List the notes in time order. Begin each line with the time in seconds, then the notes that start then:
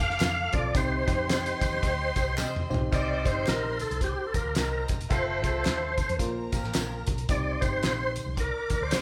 Already playing: A4 F5 D6
0.00 F1 F5
0.10 snare
0.20 F2, snare, clap, closed hi-hat, tambourine, muted conga, high conga
0.52 B1 C4 F4 A4 C5 D5, kick, closed hi-hat, muted conga, high conga, low conga
0.74 C2 C3 C4 D#4 G4 C5 D#5 C6, kick, closed hi-hat, tambourine, low conga
1.07 F2 C4 D#4 G4 C5, kick, snare, closed hi-hat, tambourine, high conga
1.30 snare, clap, closed hi-hat, tambourine
1.46 closed hi-hat
1.61 D#2, kick, closed hi-hat, tambourine, muted conga, low conga
1.74 high conga
1.83 D2, kick, closed hi-hat, tambourine, muted conga
2.15 C2 G3 C4 D#4 C5, kick, closed hi-hat, tambourine, muted conga
2.37 C3 G3 C4 D#4 C5, snare, clap, tambourine, muted conga, high conga
2.56 mid tom
2.70 B1 C4 D#4 G4 C5, tambourine, muted conga, high conga, low conga
2.74 floor tom
2.91 C2 C3 G3 C4 D#4 G4 C5 D5 C6, kick, closed hi-hat, tambourine, low conga
3.24 G1 D4 G4 C5, kick, closed hi-hat, tambourine, muted conga, high conga
3.31 D#4
3.47 A#1 A#4, snare, clap, closed hi-hat, tambourine
3.79 A4, closed hi-hat, tambourine, muted conga, low conga
3.91 C2, closed hi-hat, high conga
4.01 G4, kick, closed hi-hat, tambourine
4.27 A4
4.34 D#2 A#3 G4 A#4, kick, closed hi-hat, tambourine, muted conga
4.45 D2
4.55 C2 G3 C4 D#4 A#4 C5 A#5, snare, clap, closed hi-hat, tambourine, high conga
4.88 E1, kick, closed hi-hat, tambourine, muted conga, high conga, low conga
5.01 closed hi-hat
5.09 F1 F3 A3 C4 F4 A4 C5 A5, kick, closed hi-hat, tambourine, muted conga, low conga
5.42 C2 F4 G#4 C5, kick, closed hi-hat, tambourine, high conga
5.49 A4
5.65 D#2, snare, clap, closed hi-hat, tambourine
5.98 kick, closed hi-hat, tambourine, low conga
6.09 F2, closed hi-hat, high conga
6.19 A#1 A#2 F4 A#4 C5 A#5, kick, closed hi-hat, tambourine
6.51 A#1 F3 A#3 C4 A#4, kick, closed hi-hat, tambourine
6.63 A1, snare
6.74 A#1, snare, clap, closed hi-hat, tambourine, muted conga, high conga
7.07 B1, kick, closed hi-hat, tambourine, muted conga, high conga, low conga
7.18 closed hi-hat
7.29 C2 C3 D#4 G4 C5 D5 C6, kick, closed hi-hat, tambourine, muted conga, low conga
7.53 D5
7.61 G1 D#4 G4 C5, kick, closed hi-hat, tambourine, muted conga, high conga
7.83 A#1, snare, clap, closed hi-hat, tambourine
8.16 closed hi-hat, tambourine, muted conga, low conga
8.26 C2, high conga
8.37 A#4 D5 D6, kick, closed hi-hat, muted conga
8.70 D#2, kick, closed hi-hat, tambourine
8.81 D2 C5
8.91 snare, clap, closed hi-hat, tambourine, muted conga, high conga